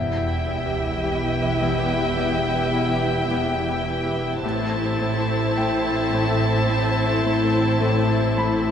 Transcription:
0.00 4.40 E1 soft
0.00 0.45 E2 soft
0.00 4.40 E2 soft
0.00 4.40 B3 soft
0.00 4.40 E4 soft
0.00 4.39 G4 soft
0.00 4.40 G4 soft
0.00 4.40 B4 medium
0.00 3.27 E5 soft
0.00 4.40 E5 soft
0.00 4.40 E5 medium
0.00 4.40 G5 soft
0.00 sub drop soft
0.46 1.60 E2 soft
1.04 3.87 E3 soft
1.61 2.16 E2 medium
2.17 2.73 E2 soft
2.74 3.29 E2 soft
3.31 4.48 E2 soft
3.88 4.48 E3 soft
4.43 8.71 A1 soft
4.43 8.71 A2 soft
4.43 4.99 A2 medium
4.43 8.71 C4 medium
4.43 8.71 E4 soft
4.43 8.71 A4 medium
4.43 8.71 C5 soft
4.43 8.71 E5 medium
4.43 8.71 A5 soft
5.01 6.11 A2 soft
5.57 8.36 A3 soft
5.57 8.71 G5 soft
6.12 6.68 A2 medium
6.69 7.24 A2 soft
7.25 7.79 A2 soft
7.81 8.71 A2 medium
8.37 8.71 A3 soft
8.37 8.71 B5 soft

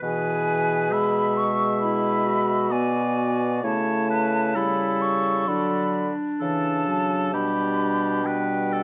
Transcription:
0.03 3.60 B2 medium
0.03 0.94 E3 medium
0.03 1.51 G#4 soft
0.03 0.93 B4 medium
0.03 0.95 G#5 medium
0.92 2.73 G#3 medium
0.92 2.73 E5 soft
0.92 1.39 B5 medium
1.37 1.79 C#6 medium
1.80 2.28 E4 soft
1.80 2.74 B5 medium
2.26 3.65 F#4 medium
2.71 3.63 B3 medium
2.71 3.65 D5 soft
2.71 3.64 G#5 medium
3.63 5.44 C#3 medium
3.63 4.57 A3 medium
3.63 4.55 E4 soft
3.63 4.10 C#5 medium
3.63 4.58 A5 medium
4.10 4.56 B4 medium
4.55 5.48 G3 medium
4.55 5.45 E4 soft
4.55 6.12 A4 medium
4.55 5.03 B5 medium
5.02 5.49 C#6 medium
5.46 6.12 D3 medium
5.46 6.12 F#3 soft
5.46 7.30 D4 soft
5.46 6.13 B5 medium
6.40 7.35 C#3 medium
6.40 6.89 E3 medium
6.40 7.29 A4 soft
6.40 7.36 A5 medium
6.87 7.35 F#3 soft
7.33 8.83 B2 soft
7.33 8.24 G3 soft
7.33 8.83 D4 soft
7.33 8.28 G4 soft
7.33 8.26 B5 medium
8.25 8.83 G3 soft
8.25 8.74 B4 soft
8.25 8.83 G5 medium
8.73 8.83 A4 soft

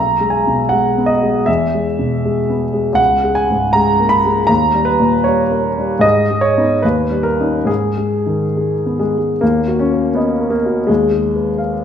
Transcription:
0.00 1.43 B1 soft
0.00 0.31 A#5 medium
0.20 0.61 G#3 soft
0.30 0.70 G#5 medium
0.47 0.87 B2 soft
0.69 1.13 G#3 soft
0.69 1.09 F#5 medium
0.97 1.38 B3 soft
1.06 1.46 D#5 medium
1.23 1.48 G#3 soft
1.46 2.95 E2 medium
1.46 1.85 E5 medium
1.74 2.14 G#3 soft
1.99 2.39 B2 soft
2.25 2.64 G#3 soft
2.50 2.89 B3 soft
2.73 2.98 G#3 soft
2.93 4.42 C#2 medium
2.93 3.35 F#5 medium
3.24 3.64 G#3 soft
3.35 3.73 G#5 medium
3.50 3.90 G#2 soft
3.73 4.15 G#3 soft
3.73 4.11 A#5 medium
4.00 4.40 A#3 soft
4.09 4.48 B5 medium
4.25 4.50 G#3 soft
4.47 5.99 D#2 medium
4.47 4.86 A#5 medium
4.74 5.15 G3 soft
4.85 5.24 B4 medium
5.00 5.41 A#2 soft
5.24 5.67 G3 soft
5.24 6.02 C#5 medium
5.51 5.93 A#3 soft
5.78 6.04 G3 soft
5.99 6.79 G#2 medium
5.99 6.42 D#5 medium
6.31 6.73 G#3 soft
6.41 6.82 C#5 medium
6.57 6.81 B3 soft
6.57 6.81 D#4 soft
6.82 7.66 D#2 medium
6.82 7.25 B4 medium
7.11 7.56 G3 soft
7.23 7.67 A#4 medium
7.40 7.66 C#4 soft
7.40 7.66 D#4 soft
7.65 9.36 G#2 soft
7.65 8.99 G#4 medium
7.97 8.44 G#3 soft
8.26 8.73 D#3 soft
8.57 8.98 G#3 soft
8.86 9.31 B3 soft
8.99 9.16 G#3 medium
9.18 9.43 G#3 soft
9.41 10.86 D#2 soft
9.41 9.79 A#3 medium
9.68 10.07 F#4 soft
9.79 10.17 C#4 medium
9.93 10.32 A#4 soft
10.15 10.52 B3 medium
10.15 10.55 D#5 soft
10.40 10.79 A#4 soft
10.50 10.88 A#3 medium
10.66 10.89 F#4 soft
10.87 11.84 D#2 soft
10.87 11.59 G#3 medium
11.12 11.50 G#4 soft
11.36 11.74 B4 soft
11.58 11.84 F5 soft

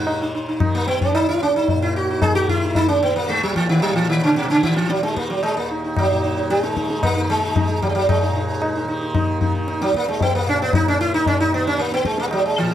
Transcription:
0.00 1.18 D#2 medium
0.00 1.72 A#2 medium
0.00 0.07 D#3 medium
0.00 0.30 G#3 medium
0.07 0.63 D#3 medium
0.07 0.20 D#4 soft
0.07 tabla na medium
0.22 0.34 D#4 soft
0.35 0.47 D#4 soft
0.49 0.60 D#4 soft
0.60 2.28 D#3 medium
0.60 0.86 D#4 soft
0.60 tabla na medium
0.60 tabla ge medium
0.75 0.87 A#3 medium
0.87 1.01 B3 loud
0.87 tabla te medium
1.01 1.14 C#4 medium
1.01 tabla ge medium
1.15 3.38 D#2 medium
1.15 1.28 D#4 loud
1.15 tabla na medium
1.29 1.42 E4 medium
1.43 1.56 C#4 medium
1.56 1.68 D#4 medium
1.68 1.94 D#4 soft
1.68 tabla tin medium
1.68 tabla ge medium
1.73 3.92 A#2 medium
1.82 1.96 E4 medium
1.96 2.22 F#4 medium
2.11 2.35 D#4 soft
2.22 2.35 G#4 loud
2.22 tabla na medium
2.22 tabla ge medium
2.28 2.83 D#3 medium
2.35 2.49 F#4 loud
2.49 2.77 E4 loud
2.49 tabla ge medium
2.63 2.75 D#4 soft
2.75 2.88 D#4 loud
2.75 tabla tin medium
2.75 tabla ge medium
2.83 4.46 D#3 medium
2.88 3.01 C#4 loud
3.03 3.15 B3 loud
3.16 3.30 A#3 medium
3.29 3.43 G#3 loud
3.29 tabla te medium
3.39 5.57 D#2 medium
3.39 tabla te medium
3.43 3.55 F#3 medium
3.56 3.68 E3 medium
3.56 tabla ke medium
3.69 3.82 D#3 medium
3.69 tabla te medium
3.82 3.95 F#3 loud
3.82 tabla na medium
3.92 6.11 A#2 medium
3.92 4.09 E3 medium
4.09 4.23 D#3 medium
4.24 4.36 C#3 medium
4.36 4.50 B2 loud
4.36 tabla te medium
4.46 5.02 D#3 medium
4.46 tabla te medium
4.51 4.63 C#3 loud
4.63 4.76 D#3 medium
4.63 tabla ke medium
4.76 4.90 E3 medium
4.76 tabla te medium
4.90 5.03 F#3 loud
4.90 tabla te medium
5.02 6.66 D#3 medium
5.02 5.16 G#3 medium
5.02 tabla te medium
5.16 5.30 A#3 medium
5.16 tabla ke medium
5.30 5.43 F#3 medium
5.30 tabla te medium
5.43 5.56 G#3 loud
5.43 tabla na medium
5.57 7.75 D#2 medium
5.57 5.69 A#3 medium
5.71 5.83 D#4 soft
5.84 6.08 D#4 soft
5.97 6.50 F#3 medium
5.97 tabla na medium
5.97 tabla ge medium
6.11 8.29 A#2 medium
6.11 6.23 D#4 soft
6.24 6.36 D#4 soft
6.37 6.62 D#4 soft
6.50 7.03 G#3 loud
6.50 tabla te medium
6.63 7.20 D#3 medium
6.63 6.75 D#4 soft
6.63 tabla te medium
6.77 6.89 D#4 soft
6.77 tabla ke medium
6.90 7.14 D#4 soft
6.90 tabla te medium
7.03 7.29 A#3 loud
7.03 tabla na medium
7.03 tabla ge medium
7.16 7.41 D#4 soft
7.20 8.84 D#3 medium
7.29 7.82 G#3 loud
7.29 tabla te medium
7.42 7.54 D#4 soft
7.56 7.68 D#4 soft
7.56 tabla na medium
7.56 tabla ge medium
7.69 7.94 D#4 soft
7.75 9.92 D#2 medium
7.82 7.88 F#3 medium
7.82 tabla ge medium
7.89 7.94 G#3 medium
7.95 8.08 F#3 medium
8.09 8.85 G#3 medium
8.09 tabla na loud
8.09 tabla ge loud
8.22 8.34 D#4 soft
8.29 10.45 A#2 medium
8.36 8.60 D#4 soft
8.62 8.74 D#4 soft
8.62 tabla na medium
8.76 8.87 D#4 soft
8.84 9.36 D#3 medium
8.88 9.00 D#4 soft
8.88 tabla na medium
9.01 9.14 D#4 soft
9.15 9.40 D#4 soft
9.15 tabla na medium
9.15 tabla ge medium
9.36 10.99 D#3 medium
9.41 9.54 D#4 soft
9.41 tabla ge medium
9.55 9.67 D#4 soft
9.68 9.93 D#4 soft
9.68 tabla te medium
9.81 9.95 F#3 medium
9.81 tabla te medium
9.92 12.06 D#2 medium
9.92 tabla ke medium
9.96 10.08 A#3 medium
10.08 10.22 G#3 medium
10.08 tabla te medium
10.21 10.35 B3 loud
10.21 tabla tin medium
10.21 tabla ge medium
10.35 10.48 A#3 medium
10.45 12.61 A#2 medium
10.45 10.62 C#4 loud
10.62 10.75 B3 loud
10.73 10.88 D#4 loud
10.73 tabla na medium
10.73 tabla ge medium
10.88 11.00 C#4 loud
10.99 11.53 D#3 medium
10.99 11.14 E4 loud
10.99 tabla te medium
11.14 11.26 D#4 loud
11.26 11.40 C#4 loud
11.26 tabla tin medium
11.26 tabla ge medium
11.40 11.54 D#4 loud
11.53 12.74 D#3 medium
11.53 11.67 B3 loud
11.53 tabla na medium
11.67 11.80 C#4 loud
11.78 11.93 A#3 loud
11.78 tabla te medium
11.92 12.05 B3 loud
11.92 tabla te medium
12.05 12.74 D#2 medium
12.05 12.19 G#3 medium
12.05 tabla ke medium
12.18 12.27 A#3 medium
12.18 tabla te medium
12.28 12.31 G#3 medium
12.28 tabla na medium
12.33 12.45 F#3 medium
12.46 12.59 G#3 medium
12.58 12.74 A#2 medium
12.58 12.72 E3 medium

